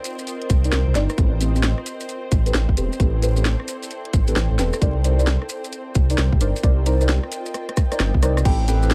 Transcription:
Already playing: C4 F4 A#4 C5 D#5
0.04 closed hi-hat, maracas
0.19 closed hi-hat, maracas
0.27 closed hi-hat, maracas
0.42 closed hi-hat
0.50 C2, kick, closed hi-hat, maracas
0.64 D#4 A#4 C5 D5, closed hi-hat, maracas
0.72 C2, snare, closed hi-hat, maracas
0.87 C2
0.95 G1 D#4 A#4 C5 D5, snare, closed hi-hat, maracas
1.09 cross-stick, maracas
1.18 A1 C4 E4 G4 A4 B4, kick, closed hi-hat, maracas
1.35 A4 D5
1.41 C4 G4 A4 B4, closed hi-hat, maracas
1.54 C4 G4 A4 B4 G5, maracas
1.63 snare, closed hi-hat, maracas
1.78 cross-stick
1.86 closed hi-hat, maracas
2.00 closed hi-hat, maracas
2.09 closed hi-hat, maracas
2.32 A1, kick, closed hi-hat, maracas
2.46 C4 G4 A4 B4, closed hi-hat, maracas
2.54 A1, snare, closed hi-hat, maracas
2.69 A1, kick
2.77 E1 C4 G4 A4 B4, closed hi-hat, maracas
2.93 maracas
3.00 A1 C4 G4 A4 B4, kick, closed hi-hat, maracas
3.22 C4 G4 A4 B4, closed hi-hat, maracas
3.37 C4 G4 A4 B4, maracas
3.45 snare, closed hi-hat, maracas
3.60 cross-stick
3.68 closed hi-hat, maracas
3.82 closed hi-hat, maracas
3.91 closed hi-hat, maracas
4.05 closed hi-hat
4.13 A1, kick, closed hi-hat, maracas
4.27 C4 G4 A4 B4, closed hi-hat, maracas
4.36 A1, snare, closed hi-hat, maracas
4.51 A1
4.59 E1 C4 G4 A4 B4, snare, closed hi-hat, maracas
4.73 cross-stick, maracas
4.82 C2 D#4 F4 A#4 C5 D5, kick, closed hi-hat, maracas
4.86 A#4
5.04 D#4 A#4 C5 D5, closed hi-hat, maracas
5.19 D#4 A#4 C5 D5, maracas
5.27 snare, closed hi-hat, maracas
5.32 D#5
5.42 cross-stick
5.49 closed hi-hat, maracas
5.64 closed hi-hat, maracas
5.72 closed hi-hat, maracas
5.95 C2, kick, closed hi-hat, maracas
6.10 D#4 A#4 C5 D5, closed hi-hat, maracas
6.18 C2, snare, closed hi-hat, maracas
6.32 C2, kick
6.41 G1 D#4 A#4 C5 D5, closed hi-hat, maracas
6.56 maracas
6.63 C2 D#4 A#4 C5 D5, kick, closed hi-hat, maracas
6.86 D#4 A#4 C5 D5, closed hi-hat, maracas
7.01 D#4 A#4 C5 D5, maracas
7.08 snare, closed hi-hat, maracas
7.23 cross-stick
7.32 closed hi-hat, maracas
7.46 closed hi-hat, maracas
7.54 cross-stick, closed hi-hat, maracas
7.69 cross-stick, closed hi-hat
7.77 kick, cross-stick, closed hi-hat, maracas
7.92 D#4 A#4 C5 D5, cross-stick, closed hi-hat, maracas
8.00 G1, cross-stick, snare, closed hi-hat, maracas
8.14 C2, kick
8.23 D#4 A#4 C5 D5, cross-stick, closed hi-hat, maracas
8.37 cross-stick, maracas
8.45 A1 C4 G4 A4 B4 C5 G5, kick, closed hi-hat, crash, maracas
8.68 C4 G4 A4 B4 G5, closed hi-hat, maracas
8.83 C4 G4 A4 B4, maracas
8.90 snare, closed hi-hat, maracas

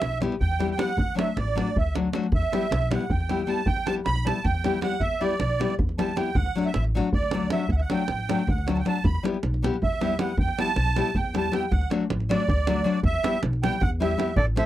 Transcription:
Already playing: E5
0.02 B1, davul high
0.12 davul high
0.20 G3 B3 E4 G4, davul high
0.32 davul high
0.40 E2 G5, davul low
0.51 davul high
0.59 G3 B3 E4 G4, davul high
0.71 G5
0.77 G3 B3 E4 G4 F#5, davul high
0.89 davul high
0.97 D2, davul low
1.15 F#3 A3 D4 F#4 E5, davul high
1.27 davul high
1.37 A1 D5, davul high
1.48 davul high
1.55 F#3 A3 D4 F#4, davul high
1.67 davul high
1.76 D2 E5, davul low
1.86 davul high
1.95 F#3 A3 D4 F#4, davul high
2.13 F#3 A3 D4 F#4, davul high
2.24 davul high
2.32 E2 E5, davul low
2.42 davul high
2.52 G3 B3 E4 G4, davul high
2.63 davul high
2.71 B1, davul high
2.82 davul high
2.90 G3 B3 E4 G4 F#5, davul high
3.01 davul high
3.10 E2 G5, davul low
3.21 davul high
3.29 G3 B3 E4 G4, davul high
3.39 davul high
3.47 G3 B3 E4 G4 A5
3.57 davul high
3.66 E2 G5, davul low
3.76 davul high
3.86 G3 B3 E4 G4 A5, davul high
3.96 davul high
4.05 B1 B5, davul high
4.16 davul high
4.25 G3 B3 E4 G4 A5, davul high
4.36 davul high
4.44 E2 G5, davul low
4.55 davul high
4.64 G3 B3 E4 G4, davul high
4.81 G3 B3 E4 G4 F#5, davul high
4.92 davul high
5.00 E2 E5, davul low
5.21 G3 B3 E4 G4 D5
5.30 davul high
5.40 B1, davul high
5.50 davul high
5.59 G3 B3 E4 G4, davul high
5.70 davul high
5.79 E2, davul low
5.89 davul high
5.98 G3 B3 E4 G4 A5, davul high
6.16 G3 B3 E4 G4 G5, davul high
6.34 D2 F#5, davul low
6.46 davul high
6.55 F#3 A3 D4 F#4
6.60 F#5
6.65 E5, davul high
6.74 A1, davul high
6.84 davul high
6.95 F#3 A3 D4 F#4
7.13 D2 D5, davul low
7.23 davul high
7.31 F#3 A3 D4 F#4, davul high
7.50 F#3 A3 D4 F#4 E5, davul high
7.59 davul high
7.69 D2 F#5, davul low
7.76 E5, davul high
7.81 F#5
7.90 F#3 A3 D4 F#4 G5, davul high
7.99 davul high
8.08 A1, davul high
8.19 davul high
8.29 F#3 A3 D4 F#4, davul high
8.39 davul high
8.47 D2 F#5, davul low
8.58 davul high
8.67 F#3 A3 D4 F#4 G5, davul high
8.73 A5, davul high
8.79 G5
8.85 F#3 A3 D4 F#4 A5, davul high
8.96 davul high
9.04 E2 B5, davul low
9.15 davul high
9.23 G3 B3 E4 G4, davul high
9.34 davul high
9.43 B1, davul high
9.54 davul high
9.62 G3 B3 E4 G4, davul high
9.74 davul high
9.82 E2 E5, davul low
9.93 davul high
10.01 G3 B3 E4 G4, davul high
10.19 G3 B3 E4 G4 F#5, davul high
10.29 davul high
10.37 E2 G5, davul low
10.48 davul high
10.58 G3 B3 E4 G4 A5, davul high
10.68 davul high
10.76 B1, davul high
10.87 davul high
10.96 G3 B3 E4 G4, davul high
11.06 davul high
11.15 E2 G5, davul low
11.25 davul high
11.34 G3 B3 E4 G4 A5, davul high
11.52 G3 B3 E4 G4 G5, davul high
11.71 D2 F#5, davul low
11.81 davul high
11.90 F#3 A3 D4 F#4, davul high
12.01 davul high
12.10 A1, davul high
12.20 davul high
12.29 F#3 A3 D4 F#4 D5, davul high
12.40 davul high
12.48 D2, davul low
12.57 davul high
12.67 F#3 A3 D4 F#4, davul high
12.84 F#3 A3 D4 F#4
12.94 davul high
13.03 E2 E5, davul low
13.14 davul high
13.23 G3 B3 E4 G4, davul high
13.34 davul high
13.43 B1, davul high
13.53 davul high
13.63 G3 B3 E4 G4 G5, davul high
13.73 davul high
13.81 E2 F#5, davul low
14.00 G3 B3 E4 G4 E5, davul high
14.11 davul high
14.17 G3 B3 E4 G4, davul high
14.28 davul high
14.36 A1 A4 D5, davul low
14.47 davul high
14.56 A3 C4 E4 A4 C5 E5, davul high

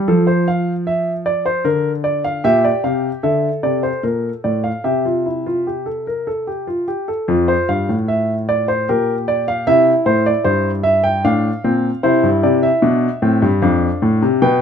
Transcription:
0.08 F3 A4
0.27 C5
0.48 F5
0.87 E5
1.26 D5
1.46 C5
1.65 D3 A#4
2.04 D5
2.24 F5
2.44 A#2 G4 E5
2.64 D5
2.84 C3 F5
3.23 D3 A4 E5
3.63 C3 D5
3.83 C5
4.03 A#2 A#4
4.44 A2 D5
4.64 F5
4.84 C3 G4 E5
5.05 F4
5.26 E4
5.46 F4
5.67 G4
5.86 A4
6.07 A#4
6.27 A4
6.47 G4
6.67 F4
6.88 G4
7.08 A4
7.28 F2 F4
7.48 C5
7.69 G2 F5
7.89 A2
8.08 E5
8.49 D5
8.68 C5
8.89 A#2 G4 A#4
9.28 D5
9.48 F5
9.67 C3 E4 E5
10.06 A2 C5
10.26 D5
10.44 G2 C5
10.83 E5
11.04 G5
11.25 A2 D4 F5
11.64 A#2 C4
12.03 C3 E4 C5
12.23 G2
12.43 C3 D5
12.63 E5
12.82 B2 D4
13.22 A2 C4
13.42 G2
13.62 F2 D4 F5
14.02 A2
14.22 C3
14.42 B2 B3 G5

